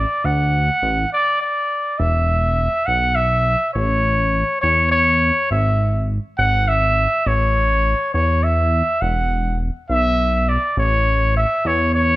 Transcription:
0.00 0.26 D5 medium
0.24 0.70 D2 loud
0.24 1.12 F#5 medium
0.83 1.06 A1 loud
1.13 1.40 D5 loud
1.41 2.00 D5 loud
1.99 2.68 E1 loud
1.99 2.88 E5 medium
2.86 3.56 B1 medium
2.86 3.17 F#5 loud
3.15 3.73 E5 loud
3.74 4.44 A1 loud
3.74 4.58 C#5 medium
4.61 5.31 E2 medium
4.61 4.90 C#5 medium
4.91 5.46 C#5 loud
5.51 6.19 G#1 loud
5.51 6.08 E5 medium
6.38 7.07 G#1 loud
6.38 6.70 F#5 loud
6.68 7.29 E5 loud
7.26 7.95 A1 loud
7.26 8.13 C#5 loud
8.14 8.82 E2 medium
8.14 8.45 C#5 medium
8.43 9.03 E5 loud
9.01 9.70 E1 loud
9.01 9.60 F#5 medium
9.90 10.58 B1 medium
9.90 10.50 E5 loud
10.49 10.77 D5 medium
10.77 11.45 A1 loud
10.77 11.32 C#5 medium
11.37 11.68 E5 loud
11.65 12.16 E2 loud
11.65 11.94 C#5 loud
11.95 12.16 C#5 loud

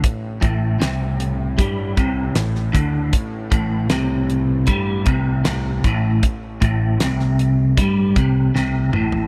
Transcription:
0.00 9.27 A1 medium
0.00 9.27 A2 medium
0.00 kick loud
0.00 closed hi-hat medium
0.41 0.78 A1 medium
0.41 0.79 A2 loud
0.41 kick loud
0.41 closed hi-hat medium
0.80 1.54 C2 loud
0.80 1.57 C3 loud
0.80 snare loud
0.80 closed hi-hat medium
1.20 closed hi-hat medium
1.58 1.94 G2 medium
1.58 1.95 G3 medium
1.58 kick loud
1.58 closed hi-hat medium
1.97 2.33 C2 medium
1.97 2.35 C3 loud
1.97 kick loud
1.97 closed hi-hat medium
2.35 2.71 A1 medium
2.35 2.67 A2 medium
2.35 snare loud
2.35 closed hi-hat medium
2.56 snare soft
2.73 3.10 D2 medium
2.73 3.11 D3 loud
2.73 kick loud
2.73 closed hi-hat medium
3.13 kick loud
3.13 closed hi-hat medium
3.51 3.88 A1 loud
3.51 3.89 A2 loud
3.51 kick loud
3.51 closed hi-hat medium
3.90 4.63 C2 loud
3.90 4.66 C3 loud
3.90 snare loud
3.90 closed hi-hat medium
4.30 closed hi-hat medium
4.67 5.04 G2 loud
4.67 5.05 G3 loud
4.67 kick loud
4.67 closed hi-hat medium
5.06 5.42 C2 medium
5.06 5.43 C3 loud
5.06 kick loud
5.06 closed hi-hat medium
5.44 5.81 C2 medium
5.44 5.82 C3 loud
5.44 snare loud
5.44 closed hi-hat medium
5.84 6.20 A1 loud
5.84 6.22 A2 medium
5.84 kick loud
5.84 closed hi-hat medium
6.23 kick loud
6.23 closed hi-hat medium
6.61 6.97 A1 loud
6.61 6.99 A2 loud
6.61 kick loud
6.61 closed hi-hat medium
7.00 7.74 C2 loud
7.00 7.77 C3 loud
7.00 snare loud
7.00 closed hi-hat loud
7.20 snare soft
7.39 closed hi-hat medium
7.77 8.13 G2 medium
7.77 8.15 G3 medium
7.77 kick loud
7.77 closed hi-hat medium
8.16 8.52 C2 medium
8.16 8.54 C3 loud
8.16 kick loud
8.16 closed hi-hat medium
8.55 8.91 C2 medium
8.55 8.92 C3 loud
8.55 snare medium
8.93 9.27 A1 medium
8.93 9.27 A2 medium
8.93 mid tom medium
9.12 floor tom medium

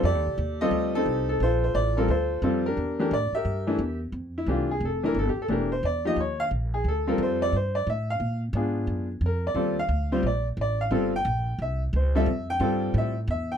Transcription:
0.03 0.15 F2 medium
0.03 0.60 G4 medium
0.03 0.60 A4 medium
0.03 0.62 D5 loud
0.15 0.26 D#2 medium
0.26 0.37 C2 medium
0.38 0.70 D#2 medium
0.61 1.05 G3 medium
0.61 0.95 C4 medium
0.61 1.05 F4 medium
0.61 1.25 G4 medium
0.61 0.94 A4 medium
0.61 0.96 D#5 loud
0.71 1.05 D2 medium
0.95 1.39 C4 medium
0.95 1.39 D#4 medium
0.95 1.27 A4 loud
1.06 1.40 C2 medium
1.29 1.41 A4 medium
1.40 1.74 A#1 medium
1.40 1.97 F4 medium
1.40 1.96 A4 medium
1.40 1.62 C5 medium
1.64 1.76 C5 medium
1.75 2.08 A1 medium
1.75 1.97 D5 medium
1.97 2.09 G3 medium
1.97 2.09 C4 medium
1.97 2.09 F4 medium
1.97 2.09 A4 medium
1.97 2.10 A#4 medium
2.08 2.41 D2 medium
2.08 2.42 F4 medium
2.08 2.42 A4 medium
2.08 2.41 C5 medium
2.42 2.76 F2 medium
2.42 2.63 G3 medium
2.42 2.63 C4 medium
2.42 2.63 F4 medium
2.42 2.63 A4 medium
2.66 2.99 D4 medium
2.66 2.99 G4 medium
2.66 3.00 A#4 medium
2.77 3.10 E2 medium
3.00 3.11 E3 medium
3.00 3.11 A3 medium
3.00 3.11 D4 medium
3.00 3.11 G4 medium
3.00 3.13 A#4 medium
3.11 3.31 A2 medium
3.11 3.32 D5 medium
3.32 3.98 G4 medium
3.32 3.98 A#4 medium
3.32 3.98 E5 medium
3.32 muted upright bass stroke soft
3.45 3.78 G2 medium
3.67 3.79 E3 medium
3.67 3.79 A3 medium
3.67 3.78 D4 medium
3.67 3.79 E4 medium
3.79 4.12 E2 medium
4.12 4.46 F2 medium
4.38 4.49 E4 medium
4.46 4.80 C2 medium
4.46 4.67 E3 medium
4.46 4.67 A3 medium
4.46 4.68 D4 medium
4.46 4.68 G4 medium
4.51 4.70 F4 medium
4.71 4.82 G#4 medium
4.80 5.14 F1 medium
4.85 5.04 A4 medium
5.03 5.15 E3 medium
5.03 5.15 A3 medium
5.03 5.15 D4 medium
5.03 5.15 E4 medium
5.03 5.17 A#4 medium
5.15 5.35 G1 medium
5.19 5.28 A4 medium
5.29 5.39 G4 medium
5.36 muted upright bass stroke soft
5.42 5.46 A4 medium
5.47 5.82 E1 medium
5.47 5.69 E3 medium
5.47 5.69 A3 medium
5.47 5.69 D4 medium
5.47 5.69 G4 medium
5.47 5.50 A4 medium
5.52 5.72 A#4 medium
5.72 5.84 C5 medium
5.83 6.16 E2 medium
5.83 6.05 D5 medium
6.05 6.16 F3 medium
6.05 6.17 A#3 medium
6.05 6.17 D#4 medium
6.05 6.16 G4 medium
6.05 6.18 D#5 medium
6.16 6.50 D#2 medium
6.16 6.40 C#5 medium
6.40 6.47 F5 loud
6.51 6.84 A#1 medium
6.74 6.86 G#4 medium
6.84 7.17 D2 medium
6.88 7.06 A4 medium
7.07 7.51 G3 medium
7.07 7.51 C4 medium
7.07 7.51 F4 medium
7.07 7.51 A4 medium
7.07 7.20 A#4 medium
7.18 7.51 F2 medium
7.23 7.42 C5 medium
7.42 7.54 D5 loud
7.52 7.86 G2 medium
7.52 7.75 C5 medium
7.75 7.87 D5 medium
7.87 8.19 A2 medium
7.87 8.09 E5 medium
8.10 8.41 F5 loud
8.20 8.52 A#2 medium
8.53 8.86 G#2 loud
8.53 9.06 B3 medium
8.53 9.06 D4 medium
8.53 9.06 F4 medium
8.53 9.06 G#4 medium
8.87 9.20 F#2 medium
9.21 9.54 F2 medium
9.26 9.45 A#4 medium
9.47 9.77 D5 medium
9.55 9.88 D#2 medium
9.55 9.75 G3 medium
9.55 9.75 C4 medium
9.55 9.75 F4 medium
9.55 9.75 A4 medium
9.79 10.22 F5 loud
9.89 10.22 D2 medium
10.12 10.23 G3 medium
10.12 10.23 C4 medium
10.12 10.23 F4 medium
10.12 10.23 C5 medium
10.23 10.56 A#1 medium
10.23 10.46 D5 medium
10.57 10.90 A1 medium
10.61 10.80 D5 medium
10.81 11.12 F5 medium
10.91 11.24 G1 medium
10.91 11.11 G3 medium
10.91 11.11 C4 medium
10.91 11.11 F4 medium
10.91 11.11 A4 medium
11.16 11.58 G5 loud
11.25 11.58 A#1 loud
11.59 11.92 C2 medium
11.59 11.81 E5 medium
11.93 12.25 C#2 loud
11.93 12.15 C5 medium
12.15 12.26 G3 medium
12.15 12.27 C4 medium
12.15 12.26 F4 medium
12.15 12.26 A4 medium
12.15 12.47 E5 loud
12.26 12.59 F2 medium
12.50 12.93 G5 loud
12.60 12.93 G2 medium
12.60 13.12 G3 medium
12.60 13.12 C4 medium
12.60 13.12 F4 medium
12.60 13.12 A4 medium
12.94 13.27 A2 medium
12.94 13.17 E5 medium
13.28 13.57 E2 loud
13.28 13.51 E5 medium
13.52 13.57 G5 medium

